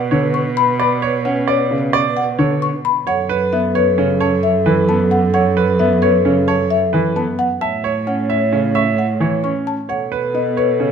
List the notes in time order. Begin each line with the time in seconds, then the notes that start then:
Already playing: B2 B4 F#5
0.11 D3 C#5
0.34 C#6
0.57 B5
0.80 D5 B5
1.02 C#5
1.25 C#4 F#5
1.48 C#5 D5
1.71 C#3
1.93 D5 C#6
2.17 F#5
2.39 D3 C#5
2.62 C#6
2.85 B5
3.07 F#2 A4 C#5 F#5
3.29 B4
3.52 B3 E5
3.75 B4 C#5
3.98 C#3 C#4
4.20 C#5 A5
4.43 E5
4.66 E3 B4
4.89 B3 A5
5.11 F#5
5.34 C#5 F#5
5.57 B4
5.79 B3 E5
6.02 B4 C#5
6.25 C#3 C#4
6.48 C#5 A5
6.70 E5
6.93 E3 B4
7.16 B3 A5
7.39 F#5
7.61 A2 C#5 E5 A5
7.84 C#5
8.07 C#4 F#5
8.30 C#5 E5
8.52 C#3 C#4
8.75 E5 C#6
8.98 F#5
9.20 E3 C#5
9.43 C#4 C#6
9.67 A5
9.89 B2 A4 C#5 F#5
10.12 B4
10.34 B3 D#5
10.57 B4 C#5
10.80 C#3 C#4